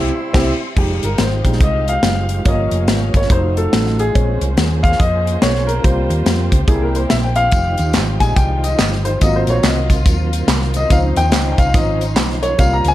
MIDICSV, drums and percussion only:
0, 0, Header, 1, 2, 480
1, 0, Start_track
1, 0, Key_signature, -4, "minor"
1, 0, Tempo, 422238
1, 871, Time_signature, 4, 2, 24, 8
1, 14715, End_track
2, 0, Start_track
2, 0, Title_t, "Drums"
2, 390, Note_on_c, 9, 36, 117
2, 390, Note_on_c, 9, 38, 115
2, 390, Note_on_c, 9, 49, 81
2, 503, Note_off_c, 9, 38, 0
2, 503, Note_off_c, 9, 49, 0
2, 504, Note_off_c, 9, 36, 0
2, 870, Note_on_c, 9, 36, 94
2, 871, Note_on_c, 9, 49, 80
2, 984, Note_off_c, 9, 36, 0
2, 985, Note_off_c, 9, 49, 0
2, 1169, Note_on_c, 9, 42, 77
2, 1282, Note_off_c, 9, 42, 0
2, 1342, Note_on_c, 9, 42, 75
2, 1346, Note_on_c, 9, 38, 111
2, 1455, Note_off_c, 9, 42, 0
2, 1460, Note_off_c, 9, 38, 0
2, 1643, Note_on_c, 9, 36, 73
2, 1648, Note_on_c, 9, 42, 77
2, 1734, Note_on_c, 9, 38, 33
2, 1757, Note_off_c, 9, 36, 0
2, 1762, Note_off_c, 9, 42, 0
2, 1824, Note_on_c, 9, 36, 107
2, 1828, Note_on_c, 9, 42, 84
2, 1847, Note_off_c, 9, 38, 0
2, 1938, Note_off_c, 9, 36, 0
2, 1942, Note_off_c, 9, 42, 0
2, 2134, Note_on_c, 9, 42, 66
2, 2247, Note_off_c, 9, 42, 0
2, 2306, Note_on_c, 9, 38, 104
2, 2311, Note_on_c, 9, 42, 86
2, 2420, Note_off_c, 9, 38, 0
2, 2424, Note_off_c, 9, 42, 0
2, 2602, Note_on_c, 9, 42, 68
2, 2716, Note_off_c, 9, 42, 0
2, 2789, Note_on_c, 9, 42, 83
2, 2792, Note_on_c, 9, 36, 100
2, 2902, Note_off_c, 9, 42, 0
2, 2906, Note_off_c, 9, 36, 0
2, 3085, Note_on_c, 9, 42, 71
2, 3199, Note_off_c, 9, 42, 0
2, 3270, Note_on_c, 9, 42, 70
2, 3275, Note_on_c, 9, 38, 100
2, 3384, Note_off_c, 9, 42, 0
2, 3388, Note_off_c, 9, 38, 0
2, 3570, Note_on_c, 9, 36, 76
2, 3576, Note_on_c, 9, 42, 73
2, 3659, Note_on_c, 9, 38, 30
2, 3684, Note_off_c, 9, 36, 0
2, 3690, Note_off_c, 9, 42, 0
2, 3751, Note_on_c, 9, 36, 108
2, 3754, Note_on_c, 9, 42, 83
2, 3773, Note_off_c, 9, 38, 0
2, 3865, Note_off_c, 9, 36, 0
2, 3868, Note_off_c, 9, 42, 0
2, 4058, Note_on_c, 9, 42, 66
2, 4172, Note_off_c, 9, 42, 0
2, 4239, Note_on_c, 9, 38, 109
2, 4244, Note_on_c, 9, 42, 82
2, 4353, Note_off_c, 9, 38, 0
2, 4358, Note_off_c, 9, 42, 0
2, 4394, Note_on_c, 9, 38, 31
2, 4508, Note_off_c, 9, 38, 0
2, 4539, Note_on_c, 9, 42, 62
2, 4653, Note_off_c, 9, 42, 0
2, 4723, Note_on_c, 9, 36, 92
2, 4723, Note_on_c, 9, 42, 87
2, 4836, Note_off_c, 9, 36, 0
2, 4837, Note_off_c, 9, 42, 0
2, 5018, Note_on_c, 9, 42, 75
2, 5131, Note_off_c, 9, 42, 0
2, 5198, Note_on_c, 9, 42, 77
2, 5203, Note_on_c, 9, 38, 104
2, 5312, Note_off_c, 9, 42, 0
2, 5316, Note_off_c, 9, 38, 0
2, 5499, Note_on_c, 9, 36, 75
2, 5512, Note_on_c, 9, 42, 78
2, 5595, Note_on_c, 9, 38, 30
2, 5613, Note_off_c, 9, 36, 0
2, 5626, Note_off_c, 9, 42, 0
2, 5682, Note_on_c, 9, 36, 98
2, 5692, Note_on_c, 9, 42, 80
2, 5709, Note_off_c, 9, 38, 0
2, 5795, Note_off_c, 9, 36, 0
2, 5805, Note_off_c, 9, 42, 0
2, 5994, Note_on_c, 9, 42, 70
2, 6108, Note_off_c, 9, 42, 0
2, 6160, Note_on_c, 9, 38, 114
2, 6165, Note_on_c, 9, 42, 76
2, 6274, Note_off_c, 9, 38, 0
2, 6279, Note_off_c, 9, 42, 0
2, 6312, Note_on_c, 9, 38, 29
2, 6426, Note_off_c, 9, 38, 0
2, 6465, Note_on_c, 9, 42, 70
2, 6578, Note_off_c, 9, 42, 0
2, 6643, Note_on_c, 9, 36, 98
2, 6644, Note_on_c, 9, 42, 88
2, 6756, Note_off_c, 9, 36, 0
2, 6758, Note_off_c, 9, 42, 0
2, 6939, Note_on_c, 9, 42, 74
2, 7053, Note_off_c, 9, 42, 0
2, 7116, Note_on_c, 9, 42, 70
2, 7121, Note_on_c, 9, 38, 109
2, 7230, Note_off_c, 9, 42, 0
2, 7235, Note_off_c, 9, 38, 0
2, 7412, Note_on_c, 9, 36, 82
2, 7416, Note_on_c, 9, 42, 80
2, 7526, Note_off_c, 9, 36, 0
2, 7530, Note_off_c, 9, 42, 0
2, 7591, Note_on_c, 9, 36, 101
2, 7593, Note_on_c, 9, 42, 85
2, 7704, Note_off_c, 9, 36, 0
2, 7707, Note_off_c, 9, 42, 0
2, 7900, Note_on_c, 9, 42, 69
2, 8014, Note_off_c, 9, 42, 0
2, 8071, Note_on_c, 9, 38, 117
2, 8075, Note_on_c, 9, 42, 81
2, 8184, Note_off_c, 9, 38, 0
2, 8189, Note_off_c, 9, 42, 0
2, 8362, Note_on_c, 9, 42, 72
2, 8476, Note_off_c, 9, 42, 0
2, 8543, Note_on_c, 9, 42, 83
2, 8552, Note_on_c, 9, 36, 98
2, 8558, Note_on_c, 9, 54, 71
2, 8657, Note_off_c, 9, 42, 0
2, 8666, Note_off_c, 9, 36, 0
2, 8671, Note_off_c, 9, 54, 0
2, 8839, Note_on_c, 9, 42, 76
2, 8857, Note_on_c, 9, 54, 49
2, 8953, Note_off_c, 9, 42, 0
2, 8971, Note_off_c, 9, 54, 0
2, 9019, Note_on_c, 9, 42, 82
2, 9024, Note_on_c, 9, 38, 102
2, 9039, Note_on_c, 9, 39, 89
2, 9039, Note_on_c, 9, 54, 84
2, 9133, Note_off_c, 9, 42, 0
2, 9138, Note_off_c, 9, 38, 0
2, 9153, Note_off_c, 9, 39, 0
2, 9153, Note_off_c, 9, 54, 0
2, 9327, Note_on_c, 9, 36, 73
2, 9328, Note_on_c, 9, 42, 75
2, 9350, Note_on_c, 9, 54, 53
2, 9440, Note_off_c, 9, 36, 0
2, 9441, Note_off_c, 9, 42, 0
2, 9463, Note_off_c, 9, 54, 0
2, 9509, Note_on_c, 9, 36, 108
2, 9510, Note_on_c, 9, 42, 82
2, 9523, Note_on_c, 9, 54, 73
2, 9623, Note_off_c, 9, 36, 0
2, 9624, Note_off_c, 9, 42, 0
2, 9636, Note_off_c, 9, 54, 0
2, 9820, Note_on_c, 9, 42, 69
2, 9824, Note_on_c, 9, 54, 55
2, 9933, Note_off_c, 9, 42, 0
2, 9937, Note_off_c, 9, 54, 0
2, 9991, Note_on_c, 9, 38, 106
2, 9995, Note_on_c, 9, 42, 80
2, 9996, Note_on_c, 9, 39, 89
2, 9996, Note_on_c, 9, 54, 90
2, 10104, Note_off_c, 9, 38, 0
2, 10109, Note_off_c, 9, 42, 0
2, 10110, Note_off_c, 9, 39, 0
2, 10110, Note_off_c, 9, 54, 0
2, 10143, Note_on_c, 9, 38, 33
2, 10257, Note_off_c, 9, 38, 0
2, 10289, Note_on_c, 9, 42, 66
2, 10289, Note_on_c, 9, 54, 51
2, 10402, Note_off_c, 9, 42, 0
2, 10403, Note_off_c, 9, 54, 0
2, 10472, Note_on_c, 9, 42, 85
2, 10477, Note_on_c, 9, 36, 92
2, 10481, Note_on_c, 9, 54, 73
2, 10586, Note_off_c, 9, 42, 0
2, 10590, Note_off_c, 9, 36, 0
2, 10595, Note_off_c, 9, 54, 0
2, 10767, Note_on_c, 9, 42, 76
2, 10788, Note_on_c, 9, 54, 51
2, 10880, Note_off_c, 9, 42, 0
2, 10901, Note_off_c, 9, 54, 0
2, 10951, Note_on_c, 9, 42, 74
2, 10955, Note_on_c, 9, 38, 104
2, 10962, Note_on_c, 9, 39, 83
2, 10962, Note_on_c, 9, 54, 89
2, 11064, Note_off_c, 9, 42, 0
2, 11069, Note_off_c, 9, 38, 0
2, 11076, Note_off_c, 9, 39, 0
2, 11076, Note_off_c, 9, 54, 0
2, 11252, Note_on_c, 9, 36, 80
2, 11257, Note_on_c, 9, 42, 81
2, 11264, Note_on_c, 9, 54, 53
2, 11365, Note_off_c, 9, 36, 0
2, 11371, Note_off_c, 9, 42, 0
2, 11378, Note_off_c, 9, 54, 0
2, 11433, Note_on_c, 9, 36, 103
2, 11437, Note_on_c, 9, 42, 91
2, 11448, Note_on_c, 9, 54, 78
2, 11546, Note_off_c, 9, 36, 0
2, 11551, Note_off_c, 9, 42, 0
2, 11561, Note_off_c, 9, 54, 0
2, 11743, Note_on_c, 9, 42, 77
2, 11746, Note_on_c, 9, 54, 54
2, 11857, Note_off_c, 9, 42, 0
2, 11860, Note_off_c, 9, 54, 0
2, 11913, Note_on_c, 9, 38, 117
2, 11918, Note_on_c, 9, 42, 83
2, 11927, Note_on_c, 9, 39, 84
2, 11927, Note_on_c, 9, 54, 95
2, 12027, Note_off_c, 9, 38, 0
2, 12032, Note_off_c, 9, 42, 0
2, 12040, Note_off_c, 9, 39, 0
2, 12040, Note_off_c, 9, 54, 0
2, 12068, Note_on_c, 9, 38, 32
2, 12181, Note_off_c, 9, 38, 0
2, 12208, Note_on_c, 9, 42, 70
2, 12219, Note_on_c, 9, 54, 53
2, 12321, Note_off_c, 9, 42, 0
2, 12332, Note_off_c, 9, 54, 0
2, 12396, Note_on_c, 9, 36, 99
2, 12397, Note_on_c, 9, 42, 89
2, 12405, Note_on_c, 9, 54, 82
2, 12510, Note_off_c, 9, 36, 0
2, 12511, Note_off_c, 9, 42, 0
2, 12518, Note_off_c, 9, 54, 0
2, 12692, Note_on_c, 9, 42, 80
2, 12710, Note_on_c, 9, 54, 48
2, 12805, Note_off_c, 9, 42, 0
2, 12824, Note_off_c, 9, 54, 0
2, 12866, Note_on_c, 9, 42, 77
2, 12870, Note_on_c, 9, 38, 120
2, 12891, Note_on_c, 9, 39, 94
2, 12891, Note_on_c, 9, 54, 93
2, 12979, Note_off_c, 9, 42, 0
2, 12984, Note_off_c, 9, 38, 0
2, 13005, Note_off_c, 9, 39, 0
2, 13005, Note_off_c, 9, 54, 0
2, 13167, Note_on_c, 9, 36, 81
2, 13168, Note_on_c, 9, 42, 80
2, 13181, Note_on_c, 9, 54, 58
2, 13280, Note_off_c, 9, 36, 0
2, 13282, Note_off_c, 9, 42, 0
2, 13295, Note_off_c, 9, 54, 0
2, 13349, Note_on_c, 9, 36, 121
2, 13354, Note_on_c, 9, 42, 90
2, 13363, Note_on_c, 9, 54, 68
2, 13462, Note_off_c, 9, 36, 0
2, 13468, Note_off_c, 9, 42, 0
2, 13477, Note_off_c, 9, 54, 0
2, 13652, Note_on_c, 9, 54, 56
2, 13656, Note_on_c, 9, 42, 70
2, 13766, Note_off_c, 9, 54, 0
2, 13770, Note_off_c, 9, 42, 0
2, 13828, Note_on_c, 9, 38, 112
2, 13832, Note_on_c, 9, 39, 93
2, 13832, Note_on_c, 9, 54, 96
2, 13833, Note_on_c, 9, 42, 82
2, 13942, Note_off_c, 9, 38, 0
2, 13945, Note_off_c, 9, 39, 0
2, 13945, Note_off_c, 9, 54, 0
2, 13946, Note_off_c, 9, 42, 0
2, 13985, Note_on_c, 9, 38, 31
2, 14098, Note_off_c, 9, 38, 0
2, 14127, Note_on_c, 9, 42, 74
2, 14135, Note_on_c, 9, 54, 53
2, 14241, Note_off_c, 9, 42, 0
2, 14249, Note_off_c, 9, 54, 0
2, 14308, Note_on_c, 9, 42, 78
2, 14311, Note_on_c, 9, 36, 93
2, 14329, Note_on_c, 9, 54, 78
2, 14421, Note_off_c, 9, 42, 0
2, 14425, Note_off_c, 9, 36, 0
2, 14443, Note_off_c, 9, 54, 0
2, 14603, Note_on_c, 9, 42, 76
2, 14636, Note_on_c, 9, 54, 53
2, 14715, Note_off_c, 9, 42, 0
2, 14715, Note_off_c, 9, 54, 0
2, 14715, End_track
0, 0, End_of_file